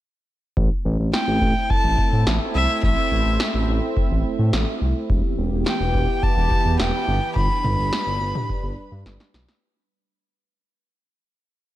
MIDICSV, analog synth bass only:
0, 0, Header, 1, 2, 480
1, 0, Start_track
1, 0, Key_signature, 0, "minor"
1, 0, Tempo, 566038
1, 483, Time_signature, 4, 2, 24, 8
1, 9972, End_track
2, 0, Start_track
2, 0, Title_t, "Analog synth bass"
2, 0, Program_c, 0, 38
2, 483, Note_on_c, 0, 33, 108
2, 586, Note_off_c, 0, 33, 0
2, 722, Note_on_c, 0, 33, 107
2, 825, Note_off_c, 0, 33, 0
2, 843, Note_on_c, 0, 33, 92
2, 946, Note_off_c, 0, 33, 0
2, 1082, Note_on_c, 0, 33, 97
2, 1185, Note_off_c, 0, 33, 0
2, 1201, Note_on_c, 0, 33, 98
2, 1304, Note_off_c, 0, 33, 0
2, 1563, Note_on_c, 0, 33, 96
2, 1666, Note_off_c, 0, 33, 0
2, 1802, Note_on_c, 0, 45, 98
2, 1905, Note_off_c, 0, 45, 0
2, 1922, Note_on_c, 0, 33, 91
2, 2025, Note_off_c, 0, 33, 0
2, 2163, Note_on_c, 0, 36, 91
2, 2266, Note_off_c, 0, 36, 0
2, 2403, Note_on_c, 0, 33, 96
2, 2506, Note_off_c, 0, 33, 0
2, 2643, Note_on_c, 0, 33, 102
2, 2746, Note_off_c, 0, 33, 0
2, 2763, Note_on_c, 0, 33, 87
2, 2866, Note_off_c, 0, 33, 0
2, 3003, Note_on_c, 0, 33, 93
2, 3106, Note_off_c, 0, 33, 0
2, 3123, Note_on_c, 0, 33, 108
2, 3226, Note_off_c, 0, 33, 0
2, 3483, Note_on_c, 0, 33, 93
2, 3586, Note_off_c, 0, 33, 0
2, 3723, Note_on_c, 0, 45, 107
2, 3826, Note_off_c, 0, 45, 0
2, 3843, Note_on_c, 0, 33, 97
2, 3946, Note_off_c, 0, 33, 0
2, 4083, Note_on_c, 0, 36, 84
2, 4186, Note_off_c, 0, 36, 0
2, 4323, Note_on_c, 0, 28, 100
2, 4426, Note_off_c, 0, 28, 0
2, 4563, Note_on_c, 0, 28, 107
2, 4666, Note_off_c, 0, 28, 0
2, 4682, Note_on_c, 0, 28, 94
2, 4785, Note_off_c, 0, 28, 0
2, 4922, Note_on_c, 0, 28, 96
2, 5025, Note_off_c, 0, 28, 0
2, 5040, Note_on_c, 0, 28, 101
2, 5144, Note_off_c, 0, 28, 0
2, 5402, Note_on_c, 0, 28, 88
2, 5505, Note_off_c, 0, 28, 0
2, 5642, Note_on_c, 0, 40, 90
2, 5745, Note_off_c, 0, 40, 0
2, 5762, Note_on_c, 0, 28, 89
2, 5865, Note_off_c, 0, 28, 0
2, 6002, Note_on_c, 0, 31, 90
2, 6105, Note_off_c, 0, 31, 0
2, 6243, Note_on_c, 0, 31, 99
2, 6346, Note_off_c, 0, 31, 0
2, 6483, Note_on_c, 0, 31, 103
2, 6585, Note_off_c, 0, 31, 0
2, 6602, Note_on_c, 0, 31, 89
2, 6705, Note_off_c, 0, 31, 0
2, 6842, Note_on_c, 0, 31, 98
2, 6945, Note_off_c, 0, 31, 0
2, 6962, Note_on_c, 0, 31, 102
2, 7065, Note_off_c, 0, 31, 0
2, 7323, Note_on_c, 0, 31, 96
2, 7426, Note_off_c, 0, 31, 0
2, 7562, Note_on_c, 0, 43, 100
2, 7665, Note_off_c, 0, 43, 0
2, 7683, Note_on_c, 0, 31, 87
2, 7786, Note_off_c, 0, 31, 0
2, 7923, Note_on_c, 0, 35, 92
2, 8025, Note_off_c, 0, 35, 0
2, 9972, End_track
0, 0, End_of_file